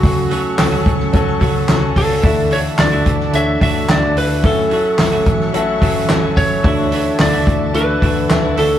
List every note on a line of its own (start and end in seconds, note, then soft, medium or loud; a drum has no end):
0.00 0.43 C#2 loud
0.00 0.30 C#3 medium
0.00 0.55 C#3 medium
0.00 0.29 F#3 medium
0.00 0.30 A3 medium
0.00 0.31 C#4 medium
0.00 0.42 C#4 medium
0.00 0.32 F#4 medium
0.00 0.42 F#4 medium
0.00 0.82 F#4 medium
0.00 0.43 A4 medium
0.00 6.60 A4 medium
0.00 2.21 C#5 medium
0.00 6.60 F#5 medium
0.00 2.21 C#6 medium
0.00 kick loud
0.00 hi-hat pedal medium
0.00 open hi-hat medium
0.29 0.72 F#3 medium
0.29 0.71 A3 medium
0.29 0.71 C#4 medium
0.29 0.70 F#4 medium
0.29 hi-hat pedal medium
0.29 open hi-hat medium
0.58 0.81 C#2 loud
0.58 0.97 C#4 medium
0.58 0.98 F#4 medium
0.58 0.98 A4 medium
0.58 snare loud
0.58 clap loud
0.58 hi-hat pedal medium
0.58 open hi-hat medium
0.71 1.14 C#3 medium
0.71 1.11 F#3 medium
0.71 1.12 A3 medium
0.71 1.13 C#4 medium
0.71 1.13 F#4 medium
0.86 1.08 C#2 medium
0.86 kick loud
0.86 hi-hat pedal medium
0.86 open hi-hat medium
1.00 snare soft
1.12 1.36 C#2 medium
1.12 1.39 F#3 medium
1.12 1.40 A3 medium
1.12 1.52 C#4 medium
1.12 1.41 C#4 medium
1.12 1.53 F#4 medium
1.12 1.41 F#4 medium
1.12 1.53 A4 loud
1.12 kick loud
1.12 hi-hat pedal medium
1.12 open hi-hat loud
1.40 1.63 C#2 medium
1.40 1.82 C#3 medium
1.40 1.82 F#3 medium
1.40 1.83 A3 medium
1.40 1.81 C#4 medium
1.40 1.80 F#4 loud
1.40 kick medium
1.40 hi-hat pedal medium
1.40 open hi-hat medium
1.68 1.91 C#2 loud
1.68 2.08 C#4 medium
1.68 2.08 F#4 medium
1.68 2.08 A4 loud
1.68 snare loud
1.68 clap medium
1.68 hi-hat pedal medium
1.68 open hi-hat medium
1.81 2.23 A3 soft
1.81 2.24 C#4 medium
1.81 2.23 F#4 medium
1.96 2.19 C#2 loud
1.96 2.54 A4 medium
1.96 kick medium
1.96 hi-hat pedal medium
1.96 open hi-hat medium
2.22 2.69 D2 loud
2.22 3.02 D3 medium
2.22 2.49 E3 medium
2.22 2.50 A3 medium
2.22 2.63 D4 medium
2.22 2.63 E4 medium
2.22 2.51 E4 medium
2.22 2.63 F#4 medium
2.22 2.52 F#4 medium
2.22 2.63 A4 medium
2.22 8.79 E5 medium
2.22 2.63 E5 medium
2.22 4.42 A5 medium
2.22 kick loud
2.22 hi-hat pedal medium
2.22 open hi-hat medium
2.50 2.92 E3 medium
2.50 2.92 A3 medium
2.50 2.91 E4 medium
2.50 2.90 F#4 medium
2.50 2.60 C#5 medium
2.50 hi-hat pedal medium
2.50 open hi-hat medium
2.78 3.01 D2 loud
2.78 3.18 D4 medium
2.78 3.18 E4 medium
2.78 3.18 F#4 medium
2.78 3.18 A4 medium
2.78 3.18 D5 medium
2.78 3.35 D5 loud
2.78 snare loud
2.78 clap medium
2.78 hi-hat pedal medium
2.78 open hi-hat medium
2.92 3.35 D3 medium
2.92 3.32 E3 medium
2.92 3.33 A3 medium
2.92 3.34 E4 medium
2.92 3.33 F#4 medium
3.06 3.29 D2 medium
3.06 kick loud
3.06 hi-hat pedal medium
3.06 open hi-hat medium
3.20 snare soft
3.33 3.56 D2 medium
3.33 3.60 E3 medium
3.33 3.61 A3 medium
3.33 3.73 D4 medium
3.33 3.73 E4 medium
3.33 3.61 E4 medium
3.33 3.73 F#4 medium
3.33 3.62 F#4 medium
3.33 3.73 A4 medium
3.33 3.73 C#5 medium
3.33 3.62 E5 loud
3.33 hi-hat pedal medium
3.33 open hi-hat loud
3.60 3.84 D2 medium
3.60 4.02 D3 medium
3.60 4.03 E3 medium
3.60 4.03 A3 medium
3.60 4.02 E4 medium
3.60 4.00 F#4 loud
3.60 3.90 E5 loud
3.60 kick loud
3.60 hi-hat pedal medium
3.60 open hi-hat medium
3.88 4.11 D2 loud
3.88 4.27 D4 medium
3.88 4.28 E4 medium
3.88 4.28 F#4 medium
3.88 4.28 A4 medium
3.88 4.16 D5 loud
3.88 4.28 E5 medium
3.88 snare loud
3.88 clap medium
3.88 hi-hat pedal medium
3.88 open hi-hat medium
4.01 4.43 A3 soft
4.01 4.44 E4 medium
4.01 4.43 F#4 medium
4.16 4.44 D2 loud
4.16 4.45 B4 medium
4.16 hi-hat pedal medium
4.16 open hi-hat medium
4.43 4.89 A1 loud
4.43 5.23 A2 medium
4.43 4.69 F#3 medium
4.43 4.70 A3 medium
4.43 4.83 C#4 medium
4.43 4.71 C#4 medium
4.43 4.83 E4 medium
4.43 4.83 F#4 medium
4.43 4.72 F#4 medium
4.43 4.83 A4 medium
4.43 5.51 A4 medium
4.43 4.83 E5 medium
4.43 6.62 C#6 medium
4.43 kick loud
4.43 hi-hat pedal medium
4.43 open hi-hat medium
4.70 5.12 F#3 medium
4.70 5.12 A3 medium
4.70 5.11 C#4 medium
4.70 5.10 F#4 medium
4.70 hi-hat pedal medium
4.70 open hi-hat medium
4.98 5.21 A1 loud
4.98 5.38 C#4 medium
4.98 5.38 E4 medium
4.98 5.38 F#4 medium
4.98 5.38 A4 medium
4.98 5.39 E5 medium
4.98 snare loud
4.98 clap medium
4.98 hi-hat pedal medium
4.98 open hi-hat loud
5.12 5.55 A2 medium
5.12 5.55 E3 medium
5.12 5.51 F#3 medium
5.12 5.53 A3 medium
5.12 5.54 C#4 medium
5.12 5.54 F#4 medium
5.26 5.49 A1 medium
5.26 kick loud
5.26 hi-hat pedal medium
5.26 open hi-hat medium
5.40 snare soft
5.53 5.77 A1 loud
5.53 5.80 F#3 medium
5.53 5.81 A3 medium
5.53 5.93 C#4 medium
5.53 5.81 C#4 medium
5.53 5.93 E4 medium
5.53 5.93 F#4 medium
5.53 5.82 F#4 medium
5.53 5.93 A4 medium
5.53 5.94 E5 loud
5.53 hi-hat pedal medium
5.53 open hi-hat loud
5.81 6.04 A1 medium
5.81 6.22 A2 medium
5.81 6.23 E3 loud
5.81 6.23 F#3 loud
5.81 6.23 A3 loud
5.81 6.22 C#4 loud
5.81 6.21 F#4 loud
5.81 kick loud
5.81 hi-hat pedal medium
5.81 open hi-hat medium
6.08 6.31 A1 loud
6.08 6.48 C#4 medium
6.08 6.48 E4 medium
6.08 6.48 F#4 medium
6.08 6.49 A4 medium
6.08 6.49 E5 medium
6.08 snare loud
6.08 clap loud
6.08 hi-hat pedal medium
6.08 open hi-hat medium
6.22 6.63 F#3 medium
6.22 6.63 A3 soft
6.22 6.64 C#4 medium
6.22 6.64 F#4 medium
6.37 6.59 A1 loud
6.37 7.21 C#5 loud
6.37 kick medium
6.37 hi-hat pedal medium
6.37 open hi-hat medium
6.63 7.09 D2 loud
6.63 7.43 D3 medium
6.63 6.90 E3 medium
6.63 6.91 A3 medium
6.63 7.03 D4 medium
6.63 7.03 E4 medium
6.63 6.92 E4 medium
6.63 7.04 F#4 medium
6.63 6.93 F#4 medium
6.63 8.79 A4 medium
6.63 7.04 A4 medium
6.63 7.04 E5 medium
6.63 8.79 F#5 medium
6.63 8.79 A5 medium
6.63 kick loud
6.63 hi-hat pedal medium
6.63 open hi-hat medium
6.91 7.33 E3 medium
6.91 7.33 A3 medium
6.91 7.32 E4 medium
6.91 7.31 F#4 medium
6.91 hi-hat pedal medium
6.91 open hi-hat medium
7.19 7.42 D2 medium
7.19 7.59 D4 medium
7.19 7.59 E4 medium
7.19 7.59 F#4 medium
7.19 7.59 A4 medium
7.19 7.59 D5 medium
7.19 7.71 D5 loud
7.19 snare loud
7.19 clap loud
7.19 hi-hat pedal medium
7.19 open hi-hat medium
7.33 7.75 D3 medium
7.33 7.72 E3 medium
7.33 7.74 A3 medium
7.33 7.75 E4 medium
7.33 7.74 F#4 medium
7.47 7.69 D2 loud
7.47 kick loud
7.47 hi-hat pedal medium
7.47 open hi-hat medium
7.73 7.97 D2 loud
7.73 8.01 E3 medium
7.73 8.02 A3 medium
7.73 8.14 D4 medium
7.73 8.14 E4 medium
7.73 8.02 E4 medium
7.73 8.14 F#4 medium
7.73 8.03 F#4 medium
7.73 8.14 A4 medium
7.73 8.58 B4 loud
7.73 8.14 E5 medium
7.73 hi-hat pedal medium
7.73 open hi-hat loud
8.01 8.25 D2 loud
8.01 8.43 D3 medium
8.01 8.43 E3 medium
8.01 8.44 A3 medium
8.01 8.43 E4 medium
8.01 8.41 F#4 medium
8.01 kick loud
8.01 hi-hat pedal medium
8.01 open hi-hat medium
8.29 8.52 D2 loud
8.29 8.56 D4 medium
8.29 8.56 E4 medium
8.29 8.57 F#4 medium
8.29 8.57 A4 medium
8.29 8.58 E5 medium
8.29 snare loud
8.29 clap loud
8.29 hi-hat pedal medium
8.29 open hi-hat loud
8.42 8.56 A3 soft
8.42 8.57 E4 soft
8.42 8.57 F#4 medium
8.56 8.79 D2 loud
8.56 8.79 D3 medium
8.56 8.79 E3 medium
8.56 8.79 A3 medium
8.56 8.79 D4 medium
8.56 8.79 E4 medium
8.56 8.79 F#4 medium
8.56 8.79 A4 medium
8.56 8.79 E5 medium
8.56 hi-hat pedal medium
8.56 open hi-hat medium